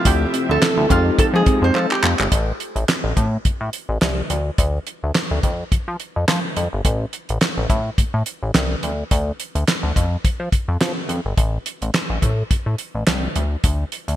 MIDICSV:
0, 0, Header, 1, 8, 480
1, 0, Start_track
1, 0, Tempo, 566038
1, 46, Time_signature, 4, 2, 24, 8
1, 12010, End_track
2, 0, Start_track
2, 0, Title_t, "Resonator guitar played with a steel bar"
2, 0, Program_c, 0, 25
2, 56, Note_on_c, 0, 67, 103
2, 428, Note_off_c, 0, 67, 0
2, 432, Note_on_c, 0, 69, 100
2, 772, Note_on_c, 0, 65, 86
2, 782, Note_off_c, 0, 69, 0
2, 1011, Note_on_c, 0, 69, 103
2, 1016, Note_off_c, 0, 65, 0
2, 1053, Note_off_c, 0, 69, 0
2, 1149, Note_on_c, 0, 68, 91
2, 1391, Note_on_c, 0, 72, 91
2, 1392, Note_off_c, 0, 68, 0
2, 1494, Note_off_c, 0, 72, 0
2, 1494, Note_on_c, 0, 69, 87
2, 1624, Note_off_c, 0, 69, 0
2, 1628, Note_on_c, 0, 67, 83
2, 1970, Note_off_c, 0, 67, 0
2, 12010, End_track
3, 0, Start_track
3, 0, Title_t, "Tine electric piano"
3, 0, Program_c, 1, 4
3, 0, Note_on_c, 1, 57, 71
3, 0, Note_on_c, 1, 60, 62
3, 0, Note_on_c, 1, 64, 60
3, 0, Note_on_c, 1, 65, 76
3, 743, Note_off_c, 1, 57, 0
3, 744, Note_off_c, 1, 60, 0
3, 747, Note_off_c, 1, 64, 0
3, 749, Note_off_c, 1, 65, 0
3, 763, Note_on_c, 1, 56, 67
3, 766, Note_on_c, 1, 60, 61
3, 772, Note_on_c, 1, 63, 65
3, 775, Note_on_c, 1, 67, 75
3, 1940, Note_off_c, 1, 56, 0
3, 1942, Note_off_c, 1, 60, 0
3, 1945, Note_off_c, 1, 63, 0
3, 1946, Note_off_c, 1, 67, 0
3, 12010, End_track
4, 0, Start_track
4, 0, Title_t, "Clean electric guitar"
4, 0, Program_c, 2, 27
4, 284, Note_on_c, 2, 60, 73
4, 383, Note_off_c, 2, 60, 0
4, 419, Note_on_c, 2, 62, 88
4, 497, Note_off_c, 2, 62, 0
4, 656, Note_on_c, 2, 64, 75
4, 735, Note_off_c, 2, 64, 0
4, 762, Note_on_c, 2, 62, 77
4, 862, Note_off_c, 2, 62, 0
4, 1245, Note_on_c, 2, 60, 81
4, 1344, Note_off_c, 2, 60, 0
4, 1379, Note_on_c, 2, 60, 85
4, 1457, Note_off_c, 2, 60, 0
4, 1726, Note_on_c, 2, 57, 74
4, 1824, Note_off_c, 2, 57, 0
4, 1860, Note_on_c, 2, 56, 75
4, 1937, Note_off_c, 2, 56, 0
4, 12010, End_track
5, 0, Start_track
5, 0, Title_t, "String section"
5, 0, Program_c, 3, 48
5, 0, Note_on_c, 3, 48, 76
5, 0, Note_on_c, 3, 50, 75
5, 0, Note_on_c, 3, 53, 87
5, 0, Note_on_c, 3, 76, 74
5, 738, Note_off_c, 3, 48, 0
5, 754, Note_off_c, 3, 53, 0
5, 755, Note_off_c, 3, 50, 0
5, 755, Note_off_c, 3, 76, 0
5, 762, Note_on_c, 3, 56, 85
5, 763, Note_on_c, 3, 63, 73
5, 764, Note_on_c, 3, 53, 79
5, 764, Note_on_c, 3, 67, 74
5, 1952, Note_off_c, 3, 56, 0
5, 1953, Note_off_c, 3, 53, 0
5, 1953, Note_off_c, 3, 63, 0
5, 1953, Note_off_c, 3, 67, 0
5, 12010, End_track
6, 0, Start_track
6, 0, Title_t, "Analog synth bass"
6, 0, Program_c, 4, 38
6, 45, Note_on_c, 4, 38, 103
6, 221, Note_off_c, 4, 38, 0
6, 419, Note_on_c, 4, 38, 100
6, 497, Note_off_c, 4, 38, 0
6, 658, Note_on_c, 4, 38, 104
6, 736, Note_off_c, 4, 38, 0
6, 764, Note_on_c, 4, 41, 102
6, 941, Note_off_c, 4, 41, 0
6, 1004, Note_on_c, 4, 53, 51
6, 1059, Note_off_c, 4, 53, 0
6, 1133, Note_on_c, 4, 53, 104
6, 1213, Note_off_c, 4, 53, 0
6, 1372, Note_on_c, 4, 41, 87
6, 1453, Note_off_c, 4, 41, 0
6, 1482, Note_on_c, 4, 53, 103
6, 1582, Note_off_c, 4, 53, 0
6, 1723, Note_on_c, 4, 41, 92
6, 1823, Note_off_c, 4, 41, 0
6, 1859, Note_on_c, 4, 31, 94
6, 1937, Note_off_c, 4, 31, 0
6, 1964, Note_on_c, 4, 33, 102
6, 2141, Note_off_c, 4, 33, 0
6, 2337, Note_on_c, 4, 33, 95
6, 2416, Note_off_c, 4, 33, 0
6, 2578, Note_on_c, 4, 33, 99
6, 2656, Note_off_c, 4, 33, 0
6, 2686, Note_on_c, 4, 45, 103
6, 2862, Note_off_c, 4, 45, 0
6, 2927, Note_on_c, 4, 45, 48
6, 2980, Note_off_c, 4, 45, 0
6, 3058, Note_on_c, 4, 45, 92
6, 3136, Note_off_c, 4, 45, 0
6, 3298, Note_on_c, 4, 33, 91
6, 3376, Note_off_c, 4, 33, 0
6, 3404, Note_on_c, 4, 36, 89
6, 3581, Note_off_c, 4, 36, 0
6, 3646, Note_on_c, 4, 38, 87
6, 3822, Note_off_c, 4, 38, 0
6, 3887, Note_on_c, 4, 38, 102
6, 4063, Note_off_c, 4, 38, 0
6, 4265, Note_on_c, 4, 38, 88
6, 4341, Note_off_c, 4, 38, 0
6, 4502, Note_on_c, 4, 38, 97
6, 4579, Note_off_c, 4, 38, 0
6, 4606, Note_on_c, 4, 41, 95
6, 4782, Note_off_c, 4, 41, 0
6, 4849, Note_on_c, 4, 53, 48
6, 4902, Note_off_c, 4, 53, 0
6, 4984, Note_on_c, 4, 53, 100
6, 5060, Note_off_c, 4, 53, 0
6, 5226, Note_on_c, 4, 41, 86
6, 5301, Note_off_c, 4, 41, 0
6, 5328, Note_on_c, 4, 53, 98
6, 5426, Note_off_c, 4, 53, 0
6, 5569, Note_on_c, 4, 41, 87
6, 5667, Note_off_c, 4, 41, 0
6, 5707, Note_on_c, 4, 31, 91
6, 5782, Note_off_c, 4, 31, 0
6, 5807, Note_on_c, 4, 33, 105
6, 5983, Note_off_c, 4, 33, 0
6, 6185, Note_on_c, 4, 33, 93
6, 6261, Note_off_c, 4, 33, 0
6, 6424, Note_on_c, 4, 33, 98
6, 6500, Note_off_c, 4, 33, 0
6, 6526, Note_on_c, 4, 45, 106
6, 6702, Note_off_c, 4, 45, 0
6, 6768, Note_on_c, 4, 45, 47
6, 6821, Note_off_c, 4, 45, 0
6, 6903, Note_on_c, 4, 45, 93
6, 6979, Note_off_c, 4, 45, 0
6, 7144, Note_on_c, 4, 33, 83
6, 7220, Note_off_c, 4, 33, 0
6, 7250, Note_on_c, 4, 36, 88
6, 7425, Note_off_c, 4, 36, 0
6, 7489, Note_on_c, 4, 38, 88
6, 7664, Note_off_c, 4, 38, 0
6, 7728, Note_on_c, 4, 38, 98
6, 7903, Note_off_c, 4, 38, 0
6, 8101, Note_on_c, 4, 38, 89
6, 8178, Note_off_c, 4, 38, 0
6, 8337, Note_on_c, 4, 38, 91
6, 8416, Note_off_c, 4, 38, 0
6, 8448, Note_on_c, 4, 41, 92
6, 8623, Note_off_c, 4, 41, 0
6, 8687, Note_on_c, 4, 53, 47
6, 8741, Note_off_c, 4, 53, 0
6, 8817, Note_on_c, 4, 53, 94
6, 8896, Note_off_c, 4, 53, 0
6, 9059, Note_on_c, 4, 41, 89
6, 9137, Note_off_c, 4, 41, 0
6, 9164, Note_on_c, 4, 53, 94
6, 9263, Note_off_c, 4, 53, 0
6, 9402, Note_on_c, 4, 41, 87
6, 9502, Note_off_c, 4, 41, 0
6, 9538, Note_on_c, 4, 31, 90
6, 9616, Note_off_c, 4, 31, 0
6, 9645, Note_on_c, 4, 33, 106
6, 9821, Note_off_c, 4, 33, 0
6, 10019, Note_on_c, 4, 33, 90
6, 10097, Note_off_c, 4, 33, 0
6, 10259, Note_on_c, 4, 33, 93
6, 10337, Note_off_c, 4, 33, 0
6, 10367, Note_on_c, 4, 45, 101
6, 10542, Note_off_c, 4, 45, 0
6, 10606, Note_on_c, 4, 45, 48
6, 10659, Note_off_c, 4, 45, 0
6, 10738, Note_on_c, 4, 45, 90
6, 10816, Note_off_c, 4, 45, 0
6, 10979, Note_on_c, 4, 33, 87
6, 11057, Note_off_c, 4, 33, 0
6, 11087, Note_on_c, 4, 36, 90
6, 11263, Note_off_c, 4, 36, 0
6, 11328, Note_on_c, 4, 38, 88
6, 11503, Note_off_c, 4, 38, 0
6, 11566, Note_on_c, 4, 38, 98
6, 11742, Note_off_c, 4, 38, 0
6, 11940, Note_on_c, 4, 38, 91
6, 12010, Note_off_c, 4, 38, 0
6, 12010, End_track
7, 0, Start_track
7, 0, Title_t, "Muted clean electric guitar strokes"
7, 177, Note_on_c, 9, 29, 50
7, 262, Note_off_c, 9, 29, 0
7, 524, Note_on_c, 9, 29, 44
7, 609, Note_off_c, 9, 29, 0
7, 1003, Note_on_c, 9, 29, 46
7, 1088, Note_off_c, 9, 29, 0
7, 1486, Note_on_c, 9, 29, 50
7, 1571, Note_off_c, 9, 29, 0
7, 12010, End_track
8, 0, Start_track
8, 0, Title_t, "Drums"
8, 45, Note_on_c, 9, 36, 103
8, 45, Note_on_c, 9, 42, 97
8, 129, Note_off_c, 9, 42, 0
8, 130, Note_off_c, 9, 36, 0
8, 286, Note_on_c, 9, 42, 81
8, 371, Note_off_c, 9, 42, 0
8, 523, Note_on_c, 9, 42, 84
8, 527, Note_on_c, 9, 38, 107
8, 533, Note_on_c, 9, 39, 84
8, 608, Note_off_c, 9, 42, 0
8, 612, Note_off_c, 9, 38, 0
8, 618, Note_off_c, 9, 39, 0
8, 765, Note_on_c, 9, 36, 93
8, 767, Note_on_c, 9, 42, 68
8, 850, Note_off_c, 9, 36, 0
8, 852, Note_off_c, 9, 42, 0
8, 1005, Note_on_c, 9, 36, 111
8, 1006, Note_on_c, 9, 42, 81
8, 1090, Note_off_c, 9, 36, 0
8, 1091, Note_off_c, 9, 42, 0
8, 1241, Note_on_c, 9, 42, 73
8, 1242, Note_on_c, 9, 36, 104
8, 1326, Note_off_c, 9, 42, 0
8, 1327, Note_off_c, 9, 36, 0
8, 1486, Note_on_c, 9, 39, 59
8, 1571, Note_off_c, 9, 39, 0
8, 1622, Note_on_c, 9, 39, 64
8, 1706, Note_off_c, 9, 39, 0
8, 1726, Note_on_c, 9, 39, 95
8, 1811, Note_off_c, 9, 39, 0
8, 1860, Note_on_c, 9, 39, 99
8, 1945, Note_off_c, 9, 39, 0
8, 1965, Note_on_c, 9, 36, 97
8, 1965, Note_on_c, 9, 42, 90
8, 2050, Note_off_c, 9, 36, 0
8, 2050, Note_off_c, 9, 42, 0
8, 2206, Note_on_c, 9, 42, 74
8, 2291, Note_off_c, 9, 42, 0
8, 2341, Note_on_c, 9, 42, 46
8, 2426, Note_off_c, 9, 42, 0
8, 2444, Note_on_c, 9, 42, 82
8, 2449, Note_on_c, 9, 38, 96
8, 2454, Note_on_c, 9, 39, 79
8, 2529, Note_off_c, 9, 42, 0
8, 2534, Note_off_c, 9, 38, 0
8, 2539, Note_off_c, 9, 39, 0
8, 2686, Note_on_c, 9, 36, 85
8, 2687, Note_on_c, 9, 42, 62
8, 2771, Note_off_c, 9, 36, 0
8, 2772, Note_off_c, 9, 42, 0
8, 2926, Note_on_c, 9, 42, 70
8, 2927, Note_on_c, 9, 36, 93
8, 3010, Note_off_c, 9, 42, 0
8, 3012, Note_off_c, 9, 36, 0
8, 3163, Note_on_c, 9, 42, 67
8, 3248, Note_off_c, 9, 42, 0
8, 3405, Note_on_c, 9, 38, 110
8, 3406, Note_on_c, 9, 42, 80
8, 3411, Note_on_c, 9, 39, 92
8, 3490, Note_off_c, 9, 38, 0
8, 3491, Note_off_c, 9, 42, 0
8, 3496, Note_off_c, 9, 39, 0
8, 3646, Note_on_c, 9, 42, 76
8, 3731, Note_off_c, 9, 42, 0
8, 3886, Note_on_c, 9, 42, 92
8, 3887, Note_on_c, 9, 36, 93
8, 3971, Note_off_c, 9, 42, 0
8, 3972, Note_off_c, 9, 36, 0
8, 4126, Note_on_c, 9, 42, 70
8, 4211, Note_off_c, 9, 42, 0
8, 4362, Note_on_c, 9, 42, 76
8, 4367, Note_on_c, 9, 38, 100
8, 4373, Note_on_c, 9, 39, 79
8, 4447, Note_off_c, 9, 42, 0
8, 4452, Note_off_c, 9, 38, 0
8, 4457, Note_off_c, 9, 39, 0
8, 4607, Note_on_c, 9, 36, 85
8, 4608, Note_on_c, 9, 42, 65
8, 4692, Note_off_c, 9, 36, 0
8, 4693, Note_off_c, 9, 42, 0
8, 4849, Note_on_c, 9, 36, 102
8, 4849, Note_on_c, 9, 42, 74
8, 4933, Note_off_c, 9, 36, 0
8, 4934, Note_off_c, 9, 42, 0
8, 5085, Note_on_c, 9, 42, 72
8, 5170, Note_off_c, 9, 42, 0
8, 5327, Note_on_c, 9, 38, 120
8, 5328, Note_on_c, 9, 42, 78
8, 5332, Note_on_c, 9, 39, 94
8, 5412, Note_off_c, 9, 38, 0
8, 5413, Note_off_c, 9, 42, 0
8, 5417, Note_off_c, 9, 39, 0
8, 5567, Note_on_c, 9, 42, 77
8, 5651, Note_off_c, 9, 42, 0
8, 5806, Note_on_c, 9, 42, 93
8, 5807, Note_on_c, 9, 36, 93
8, 5891, Note_off_c, 9, 36, 0
8, 5891, Note_off_c, 9, 42, 0
8, 6046, Note_on_c, 9, 42, 72
8, 6130, Note_off_c, 9, 42, 0
8, 6181, Note_on_c, 9, 42, 49
8, 6266, Note_off_c, 9, 42, 0
8, 6283, Note_on_c, 9, 42, 77
8, 6287, Note_on_c, 9, 38, 98
8, 6293, Note_on_c, 9, 39, 81
8, 6368, Note_off_c, 9, 42, 0
8, 6372, Note_off_c, 9, 38, 0
8, 6378, Note_off_c, 9, 39, 0
8, 6526, Note_on_c, 9, 36, 88
8, 6528, Note_on_c, 9, 42, 64
8, 6611, Note_off_c, 9, 36, 0
8, 6613, Note_off_c, 9, 42, 0
8, 6768, Note_on_c, 9, 36, 98
8, 6768, Note_on_c, 9, 42, 73
8, 6852, Note_off_c, 9, 36, 0
8, 6853, Note_off_c, 9, 42, 0
8, 7004, Note_on_c, 9, 42, 68
8, 7089, Note_off_c, 9, 42, 0
8, 7247, Note_on_c, 9, 38, 115
8, 7248, Note_on_c, 9, 42, 79
8, 7252, Note_on_c, 9, 39, 92
8, 7331, Note_off_c, 9, 38, 0
8, 7332, Note_off_c, 9, 42, 0
8, 7337, Note_off_c, 9, 39, 0
8, 7487, Note_on_c, 9, 42, 77
8, 7572, Note_off_c, 9, 42, 0
8, 7727, Note_on_c, 9, 36, 95
8, 7727, Note_on_c, 9, 42, 91
8, 7811, Note_off_c, 9, 42, 0
8, 7812, Note_off_c, 9, 36, 0
8, 7968, Note_on_c, 9, 42, 69
8, 8053, Note_off_c, 9, 42, 0
8, 8102, Note_on_c, 9, 42, 49
8, 8187, Note_off_c, 9, 42, 0
8, 8204, Note_on_c, 9, 42, 80
8, 8209, Note_on_c, 9, 38, 100
8, 8214, Note_on_c, 9, 39, 78
8, 8289, Note_off_c, 9, 42, 0
8, 8294, Note_off_c, 9, 38, 0
8, 8299, Note_off_c, 9, 39, 0
8, 8447, Note_on_c, 9, 36, 85
8, 8451, Note_on_c, 9, 42, 63
8, 8532, Note_off_c, 9, 36, 0
8, 8536, Note_off_c, 9, 42, 0
8, 8688, Note_on_c, 9, 36, 98
8, 8689, Note_on_c, 9, 42, 76
8, 8773, Note_off_c, 9, 36, 0
8, 8774, Note_off_c, 9, 42, 0
8, 8924, Note_on_c, 9, 36, 91
8, 8925, Note_on_c, 9, 42, 72
8, 9009, Note_off_c, 9, 36, 0
8, 9009, Note_off_c, 9, 42, 0
8, 9168, Note_on_c, 9, 38, 111
8, 9168, Note_on_c, 9, 42, 75
8, 9173, Note_on_c, 9, 39, 93
8, 9252, Note_off_c, 9, 38, 0
8, 9253, Note_off_c, 9, 42, 0
8, 9258, Note_off_c, 9, 39, 0
8, 9407, Note_on_c, 9, 42, 77
8, 9491, Note_off_c, 9, 42, 0
8, 9646, Note_on_c, 9, 36, 90
8, 9646, Note_on_c, 9, 42, 93
8, 9730, Note_off_c, 9, 36, 0
8, 9731, Note_off_c, 9, 42, 0
8, 9887, Note_on_c, 9, 42, 72
8, 9972, Note_off_c, 9, 42, 0
8, 10022, Note_on_c, 9, 42, 47
8, 10107, Note_off_c, 9, 42, 0
8, 10123, Note_on_c, 9, 42, 76
8, 10128, Note_on_c, 9, 38, 104
8, 10133, Note_on_c, 9, 39, 84
8, 10208, Note_off_c, 9, 42, 0
8, 10213, Note_off_c, 9, 38, 0
8, 10218, Note_off_c, 9, 39, 0
8, 10365, Note_on_c, 9, 36, 90
8, 10367, Note_on_c, 9, 42, 65
8, 10450, Note_off_c, 9, 36, 0
8, 10451, Note_off_c, 9, 42, 0
8, 10606, Note_on_c, 9, 36, 102
8, 10606, Note_on_c, 9, 42, 73
8, 10691, Note_off_c, 9, 36, 0
8, 10691, Note_off_c, 9, 42, 0
8, 10841, Note_on_c, 9, 42, 68
8, 10926, Note_off_c, 9, 42, 0
8, 11084, Note_on_c, 9, 38, 113
8, 11085, Note_on_c, 9, 42, 81
8, 11090, Note_on_c, 9, 39, 96
8, 11169, Note_off_c, 9, 38, 0
8, 11170, Note_off_c, 9, 42, 0
8, 11174, Note_off_c, 9, 39, 0
8, 11325, Note_on_c, 9, 42, 75
8, 11410, Note_off_c, 9, 42, 0
8, 11564, Note_on_c, 9, 42, 93
8, 11565, Note_on_c, 9, 36, 98
8, 11648, Note_off_c, 9, 42, 0
8, 11650, Note_off_c, 9, 36, 0
8, 11804, Note_on_c, 9, 42, 73
8, 11889, Note_off_c, 9, 42, 0
8, 11942, Note_on_c, 9, 42, 47
8, 12010, Note_off_c, 9, 42, 0
8, 12010, End_track
0, 0, End_of_file